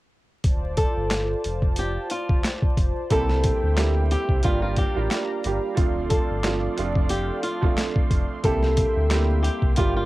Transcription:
0.43 0.85 D1 loud
0.43 3.08 F4 medium
0.43 1.43 C5 medium
0.43 1.43 D5 medium
0.43 3.08 A5 medium
0.43 kick loud
0.43 closed hi-hat medium
0.77 1.26 A4 medium
0.77 kick medium
0.77 closed hi-hat medium
0.96 1.35 G1 loud
1.11 snare loud
1.11 clap medium
1.11 closed hi-hat loud
1.44 1.97 F1 loud
1.44 4.41 C5 medium
1.44 3.09 D5 medium
1.44 closed hi-hat medium
1.62 kick medium
1.76 2.08 G4 medium
1.76 closed hi-hat medium
2.10 2.41 F4 medium
2.10 closed hi-hat medium
2.29 2.41 D1 medium
2.29 kick loud
2.44 snare loud
2.44 clap medium
2.44 closed hi-hat loud
2.62 kick loud
2.77 2.92 F1 medium
2.77 kick loud
2.77 closed hi-hat medium
3.10 3.52 C2 loud
3.10 3.72 G3 medium
3.10 3.72 A#3 medium
3.10 3.73 C4 medium
3.10 3.73 E4 medium
3.10 5.75 G4 medium
3.10 3.73 G4 loud
3.10 4.07 A4 loud
3.10 4.43 E5 medium
3.10 4.43 G5 medium
3.10 kick loud
3.10 closed hi-hat medium
3.29 snare soft
3.44 kick loud
3.44 closed hi-hat medium
3.63 4.16 D2 loud
3.76 4.42 G3 medium
3.76 4.42 A#3 medium
3.76 4.44 C4 medium
3.76 4.44 E4 medium
3.76 4.44 G4 loud
3.76 snare loud
3.76 clap medium
3.76 closed hi-hat loud
4.11 4.41 G4 medium
4.11 closed hi-hat medium
4.29 4.41 C2 medium
4.29 kick medium
4.43 4.86 G1 loud
4.43 4.91 G3 loud
4.43 4.91 A#3 medium
4.43 4.91 D4 medium
4.43 4.61 F4 medium
4.43 4.92 F4 medium
4.43 4.92 G4 loud
4.43 5.75 D5 medium
4.43 8.40 F5 medium
4.43 5.76 A#5 medium
4.43 kick loud
4.43 closed hi-hat medium
4.62 4.76 F4 medium
4.76 5.08 G4 medium
4.76 kick medium
4.76 closed hi-hat medium
4.95 5.08 A1 loud
4.95 5.08 G3 medium
4.95 5.08 A#3 medium
4.95 5.09 D4 medium
4.95 5.09 F4 medium
4.95 5.10 G4 loud
5.09 5.41 G3 medium
5.09 5.41 A#3 medium
5.09 5.42 D4 medium
5.09 5.42 F4 medium
5.09 5.42 G4 medium
5.09 snare loud
5.09 clap medium
5.09 closed hi-hat loud
5.44 5.59 G1 loud
5.44 5.75 G3 medium
5.44 5.76 A#3 medium
5.44 5.75 D4 medium
5.44 5.75 F4 medium
5.44 5.76 G4 medium
5.44 closed hi-hat medium
5.75 6.19 D1 loud
5.75 6.38 F3 medium
5.75 6.38 A3 medium
5.75 6.38 C4 medium
5.75 6.39 D4 medium
5.75 6.39 F4 loud
5.75 8.41 A4 medium
5.75 8.41 D5 medium
5.75 9.73 C6 medium
5.75 kick loud
5.75 closed hi-hat medium
6.10 6.59 A4 medium
6.10 kick loud
6.10 closed hi-hat medium
6.30 6.68 G1 loud
6.44 6.75 F3 loud
6.44 6.76 A3 medium
6.44 6.76 C4 medium
6.44 6.77 D4 medium
6.44 6.77 F4 loud
6.44 snare loud
6.44 clap medium
6.44 closed hi-hat loud
6.77 7.31 F1 loud
6.77 7.55 F3 loud
6.77 7.55 A3 medium
6.77 7.55 C4 medium
6.77 7.56 D4 medium
6.77 7.56 F4 loud
6.77 closed hi-hat medium
6.95 kick medium
7.09 7.40 G4 medium
7.09 closed hi-hat loud
7.43 7.74 F4 medium
7.43 closed hi-hat medium
7.61 7.75 D1 medium
7.61 8.37 F3 loud
7.61 8.38 A3 loud
7.61 8.38 C4 medium
7.61 8.38 D4 medium
7.61 8.39 F4 loud
7.61 kick loud
7.78 snare loud
7.78 clap medium
7.78 closed hi-hat loud
7.96 kick loud
8.11 8.25 F1 medium
8.11 kick loud
8.11 closed hi-hat medium
8.43 8.85 C2 loud
8.43 9.05 G3 medium
8.43 9.06 A#3 medium
8.43 10.05 A#3 medium
8.43 9.06 C4 medium
8.43 9.06 E4 medium
8.43 9.07 G4 loud
8.43 9.40 A4 loud
8.43 9.76 E5 medium
8.43 10.05 G5 medium
8.43 kick loud
8.43 closed hi-hat medium
8.63 snare soft
8.77 kick medium
8.77 closed hi-hat medium
8.96 9.49 D2 loud
9.10 9.75 G3 medium
9.10 9.76 A#3 medium
9.10 9.78 C4 medium
9.10 9.78 E4 medium
9.10 9.77 G4 loud
9.10 snare loud
9.10 clap medium
9.10 closed hi-hat loud
9.43 9.73 G4 medium
9.43 closed hi-hat medium
9.62 9.74 C2 medium
9.62 kick medium
9.76 10.05 G1 loud
9.76 10.05 G3 loud
9.76 10.05 A#3 medium
9.76 10.05 D4 medium
9.76 9.94 F4 medium
9.76 10.05 F4 medium
9.76 10.05 G4 loud
9.76 10.05 F5 medium
9.76 10.05 D6 medium
9.76 kick loud
9.76 closed hi-hat medium
9.96 10.05 F4 medium

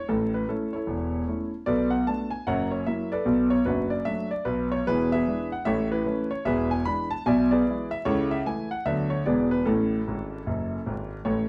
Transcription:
0.08 0.42 A1 medium
0.08 0.42 A2 medium
0.08 0.30 A4 medium
0.34 0.46 B4 medium
0.49 0.71 A3 soft
0.49 0.72 C#4 medium
0.49 0.72 E4 medium
0.49 0.70 A4 medium
0.73 1.27 E4 soft
0.73 1.50 A4 soft
0.73 1.41 C#5 medium
0.87 1.21 E1 medium
0.87 1.21 E2 medium
1.27 1.50 A3 soft
1.27 1.49 C#4 soft
1.27 1.50 E4 soft
1.66 2.01 B1 medium
1.66 2.01 B2 medium
1.66 1.91 A4 medium
1.66 1.91 B4 medium
1.66 1.88 D5 medium
1.90 2.04 F#5 medium
2.07 2.29 A3 soft
2.07 2.29 B3 soft
2.07 2.29 D4 soft
2.07 2.29 A5 medium
2.31 2.44 G#5 medium
2.47 2.81 F#1 medium
2.47 2.81 F#2 medium
2.47 2.71 A#4 medium
2.47 2.70 C#5 medium
2.47 2.68 F#5 medium
2.72 2.84 C#5 medium
2.87 3.09 F#3 soft
2.87 3.09 A#3 soft
2.87 3.09 E4 soft
2.87 3.08 E5 medium
3.12 3.50 A4 medium
3.12 3.50 B4 medium
3.12 3.46 D5 medium
3.25 3.58 B1 medium
3.25 3.58 B2 medium
3.50 3.64 C#5 medium
3.65 3.98 F#1 medium
3.65 3.98 F#2 medium
3.65 3.90 D4 medium
3.65 3.90 F#4 medium
3.65 3.87 B4 medium
3.90 4.04 D5 medium
4.05 4.28 F#3 soft
4.05 4.28 A3 soft
4.05 4.28 D4 soft
4.05 4.27 E5 loud
4.31 4.44 D5 medium
4.45 4.78 B1 medium
4.45 4.78 B2 medium
4.45 4.67 B4 medium
4.72 4.84 C#5 medium
4.87 5.21 E1 medium
4.87 5.21 E2 medium
4.87 5.11 E4 medium
4.87 5.11 G#4 medium
4.87 5.08 B4 loud
5.12 5.50 G#4 medium
5.12 5.50 B4 medium
5.12 5.46 E5 loud
5.28 5.49 E3 soft
5.28 5.50 G#3 soft
5.28 5.50 D4 medium
5.52 5.65 F#5 medium
5.65 6.00 A1 medium
5.65 6.00 A2 medium
5.65 5.90 A4 medium
5.65 5.90 C#5 medium
5.65 5.87 E5 loud
5.92 6.29 E4 medium
5.92 6.26 B4 medium
6.06 6.28 E3 medium
6.06 6.28 A3 soft
6.06 6.28 C#4 medium
6.31 6.44 C#5 medium
6.45 6.80 E1 medium
6.45 6.80 E2 medium
6.45 6.70 G#4 medium
6.45 6.70 B4 medium
6.45 6.67 E5 loud
6.71 6.84 G#5 loud
6.85 7.07 E3 soft
6.85 7.08 G#3 soft
6.85 7.08 D4 medium
6.85 7.07 B5 loud
7.10 7.23 A5 medium
7.26 7.60 B1 medium
7.26 7.60 B2 medium
7.26 7.50 D5 medium
7.26 7.50 E5 medium
7.26 7.47 G#5 loud
7.51 7.89 G#4 medium
7.51 7.89 B4 medium
7.51 7.85 D5 medium
7.67 7.89 E3 medium
7.67 7.89 G#3 soft
7.67 7.89 E4 medium
7.91 8.04 E5 loud
8.05 8.40 C#2 medium
8.05 8.39 C#3 medium
8.05 8.30 E4 medium
8.05 8.29 A4 medium
8.05 8.27 C#5 loud
8.31 8.44 E5 medium
8.46 8.68 E3 soft
8.46 8.69 A3 soft
8.46 8.69 E4 medium
8.46 8.67 G#5 medium
8.71 8.83 F#5 medium
8.85 9.19 D2 medium
8.85 9.20 D3 medium
8.85 9.07 F#3 soft
8.85 9.08 B3 soft
8.85 9.08 D4 soft
8.85 9.07 E5 medium
9.10 9.23 C#5 medium
9.26 9.60 E1 medium
9.26 9.60 E2 medium
9.26 9.48 E3 soft
9.26 9.48 G#3 soft
9.26 9.49 B3 soft
9.26 9.49 G#4 medium
9.26 9.50 B4 medium
9.26 9.47 D5 medium
9.51 9.64 B4 medium
9.65 10.00 A1 medium
9.65 10.00 A2 medium
9.65 11.07 C#4 medium
9.65 11.07 E4 medium
9.65 10.89 A4 medium
10.08 10.37 G#1 medium
10.08 10.37 G#2 medium
10.46 10.76 F#1 medium
10.46 10.76 F#2 medium
10.86 11.16 G#1 medium
10.86 11.16 G#2 medium
11.25 11.49 A1 medium
11.25 11.49 A2 medium
11.25 11.49 A4 medium
11.25 11.46 C#5 medium

